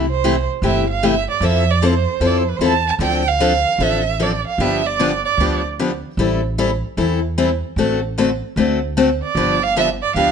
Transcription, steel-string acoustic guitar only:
0.24 C3 E3 A3 E4 G4
0.63 C3 E3 A3 E4 G4
1.03 C3 E3 A3 E4 G4
1.42 F3 C4 E4 A4
1.82 F3 C4 E4 A4
2.21 F3 C4 E4 A4
2.61 F3 C4 E4 A4
3.00 D3 F3 C4 D4 A4
3.40 D3 F3 C4 D4 A4
3.80 D3 F3 C4 D4 A4
4.20 D3 F3 C4 D4 A4
4.60 D3 F3 B3 D4 G4
4.99 D3 F3 B3 D4 G4
5.40 D3 F3 B3 D4 G4
5.79 D3 F3 B3 D4 G4
6.19 E3 G3 C4 E4 A4
6.58 E3 G3 C4 E4 A4
6.97 E3 G3 C4 E4 A4
7.38 E3 G3 C4 E4 A4
7.78 D3 A3 C4 F#4 A4
8.18 D3 A3 C4 F#4 A4
8.57 D3 A3 C4 F#4 A4
8.97 D3 A3 C4 F#4 A4
9.37 D3 F3 B3 D4 G4
9.76 D3 F3 B3 D4 G4
10.16 D3 F3 B3 D4 G4

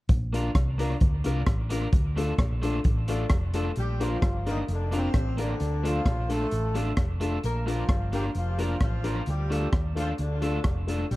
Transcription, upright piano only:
0.33 D4 F4 A#4
0.79 D4 F4 A#4
1.25 D4 F4 A#4
1.71 D4 F4 A#4
2.17 D4 F4 A4
2.63 D4 F4 A4
3.09 D4 F4 A4
3.54 D4 F4 A4
4.00 D4 F4 A#4
4.46 D4 F4 A#4
4.93 D4 F4 A#4
5.38 D4 F4 A#4
5.83 D4 F4 A4
6.29 D4 F4 A4
6.75 D4 F4 A4
7.21 D4 F4 A4
7.66 D4 F4 A#4
8.13 D4 F4 A#4
8.58 D4 F4 A#4
9.03 D4 F4 A#4
9.50 D4 F4 A4
9.95 D4 F4 A4
10.42 D4 F4 A4
10.87 D4 F4 A4

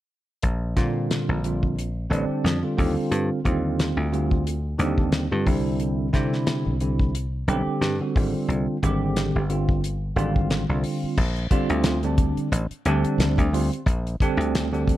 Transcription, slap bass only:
0.43 A#1
0.77 A#2
1.29 A#1
2.11 A1
2.29 muted slap bass stroke
2.44 F2
2.78 D#2
3.11 G2
3.45 D#2
3.97 D2
4.79 D#2
5.32 G2
5.46 C2
6.14 C3
6.67 C2
7.48 B1
7.81 G2
8.16 G#1
8.48 C2
8.83 G#1
9.35 G1
10.16 G#1
10.69 C2
11.04 muted slap bass stroke
11.17 A#1
11.70 D2
12.37 muted slap bass stroke
12.52 A1
12.85 D2
13.04 muted slap bass stroke
13.18 D2
13.38 D2
13.86 A#1
14.37 D2

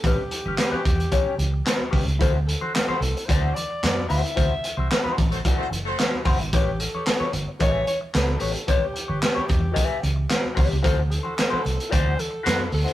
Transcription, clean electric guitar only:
0.05 C#4 G4 B4
0.31 muted clean electric guitar stroke
0.46 C#4 G4 B4
0.72 C#4 G4 B4
0.84 muted clean electric guitar stroke
0.98 muted clean electric guitar stroke
1.11 C#4 G4 C#5
1.37 muted clean electric guitar stroke
1.52 muted clean electric guitar stroke
1.65 muted clean electric guitar stroke
1.78 muted clean electric guitar stroke
1.91 C#4 G4 B4
2.06 muted clean electric guitar stroke
2.19 E4 F#4 C5
2.48 muted clean electric guitar stroke
2.61 E4 F#4 C5
2.88 E4 F#4 C5
3.02 muted clean electric guitar stroke
3.17 muted clean electric guitar stroke
3.28 E4 F#4 D5
3.55 muted clean electric guitar stroke
3.70 muted clean electric guitar stroke
3.83 muted clean electric guitar stroke
3.97 muted clean electric guitar stroke
4.09 E4 F#4 C5
4.24 muted clean electric guitar stroke
4.35 E4 F#4 C5
4.63 muted clean electric guitar stroke
4.77 E4 F#4 C5
4.90 muted clean electric guitar stroke
5.04 E4 F#4 C5
5.18 muted clean electric guitar stroke
5.33 muted clean electric guitar stroke
5.45 E4 F#4 D5
5.72 muted clean electric guitar stroke
5.86 muted clean electric guitar stroke
5.99 muted clean electric guitar stroke
6.13 muted clean electric guitar stroke
6.25 E4 F#4 C5
6.40 muted clean electric guitar stroke
6.53 G4 B4 C#5
6.80 muted clean electric guitar stroke
6.95 G4 B4 C#5
7.06 muted clean electric guitar stroke
7.20 G4 B4 C#5
7.33 muted clean electric guitar stroke
7.48 muted clean electric guitar stroke
7.59 F#4 A#4 E5
7.70 G4 B4
7.87 muted clean electric guitar stroke
8.01 muted clean electric guitar stroke
8.14 muted clean electric guitar stroke
8.28 muted clean electric guitar stroke
8.39 G4 B4 C#5
8.54 muted clean electric guitar stroke
8.67 G4 B4 C#5
8.94 muted clean electric guitar stroke
9.08 G4 B4 C#5
9.20 muted clean electric guitar stroke
9.35 G4 B4 C#5
9.47 muted clean electric guitar stroke
9.61 muted clean electric guitar stroke
9.72 F#4 A#4 D#5
9.83 G4 B4 E5
10.01 muted clean electric guitar stroke
10.16 muted clean electric guitar stroke
10.43 muted clean electric guitar stroke
10.55 G4 B4 C#5
10.70 muted clean electric guitar stroke
10.82 E4 F#4 C5
11.09 muted clean electric guitar stroke
11.23 E4 F#4 C5
11.36 muted clean electric guitar stroke
11.50 E4 F#4 C5
11.64 muted clean electric guitar stroke
11.77 muted clean electric guitar stroke
11.89 E4 F#4 D5
12.16 muted clean electric guitar stroke
12.31 muted clean electric guitar stroke
12.43 E4 F#4 C5
12.70 muted clean electric guitar stroke
12.84 E4 F#4 C5

